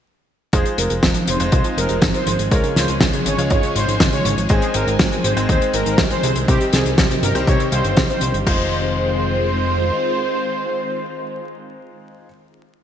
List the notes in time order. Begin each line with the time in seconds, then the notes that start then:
0.53 F1 F3 G#3 C4 D#4 F4 G#4 C5, kick, closed hi-hat
0.66 F3, closed hi-hat
0.78 F1 G#3 A#4, closed hi-hat
0.90 F1 G#3, closed hi-hat
1.03 F1 F3, kick, snare, closed hi-hat
1.14 F3, closed hi-hat
1.27 F1 F3 C5, closed hi-hat
1.40 F1 G#3 D#4 F4 C5, closed hi-hat
1.52 C2 F3 C5, kick, closed hi-hat
1.64 F3, closed hi-hat
1.77 F1 G#3 A#4, closed hi-hat
1.89 F1 G#3, closed hi-hat
2.02 G#1 F3, kick, snare, closed hi-hat
2.14 F3 C5, closed hi-hat
2.27 G#1 F3, closed hi-hat
2.39 G#1 G#3, closed hi-hat
2.51 C#2 C#3 G#3 C#4 F4 A#4 C#5, kick, closed hi-hat
2.64 C#3, closed hi-hat
2.76 C#2 F3 C5, snare, closed hi-hat
2.88 C#2 F3, closed hi-hat
3.01 C#2 C#3, kick, snare, closed hi-hat
3.13 C#3, closed hi-hat
3.26 G#1 C#3 C#5, closed hi-hat
3.38 C#2 F3 G#3 C#4 F4 C#5, closed hi-hat
3.50 G#1 C#3 C#5, kick, closed hi-hat
3.63 C#3, closed hi-hat
3.75 G#1 F3 C5, closed hi-hat
3.88 G#1 F3, closed hi-hat
4.00 G#1 C#3, kick, snare, closed hi-hat
4.13 C#3 C#5, closed hi-hat
4.25 G#1 C#3, closed hi-hat
4.37 G#1 F3, closed hi-hat
4.49 G#1 D#3 G#3 C4 D#4 G#4 C5, kick, closed hi-hat
4.62 G#3, closed hi-hat
4.74 G#1 C4 A#4, closed hi-hat
4.87 G#1 C4, closed hi-hat
4.99 G#1 G#3, kick, snare, closed hi-hat
5.12 G#3, closed hi-hat
5.24 G#1 G#3 C5, closed hi-hat
5.37 G#1 G#3 C4 D#4 C5, closed hi-hat
5.49 D#2 G#3 C5, kick, closed hi-hat
5.61 G#3, closed hi-hat
5.74 G#1 C4 A#4, closed hi-hat
5.86 G#1 C4, closed hi-hat
5.98 C2 G#3, kick, snare, closed hi-hat
6.10 G#3 C5, closed hi-hat
6.23 C2 G#3, closed hi-hat
6.36 C2 C4, closed hi-hat
6.48 C2 C3 G3 C4 D#4 G4 C5, kick, closed hi-hat
6.61 C3, closed hi-hat
6.73 C2 D#3 G#4, snare, closed hi-hat
6.85 C2 D#3, closed hi-hat
6.98 C2 C3, kick, snare, closed hi-hat
7.10 C3, closed hi-hat
7.23 G1 C3 A#4, closed hi-hat
7.35 C2 D#3 G3 C4 D#4 C5, closed hi-hat
7.47 C2 C3 C#5, kick, closed hi-hat
7.60 C3, closed hi-hat
7.72 C2 D#3 G3 C4 D#4 C5 F5, closed hi-hat
7.84 G1 D#3, closed hi-hat
7.97 C2 C3, kick, snare, closed hi-hat
8.09 C3 C5, closed hi-hat
8.21 C2 C3, closed hi-hat
8.34 G1 D#3, closed hi-hat
8.47 F1 D#3 F3 G#3 C4 D#4 F4 C5, kick, crash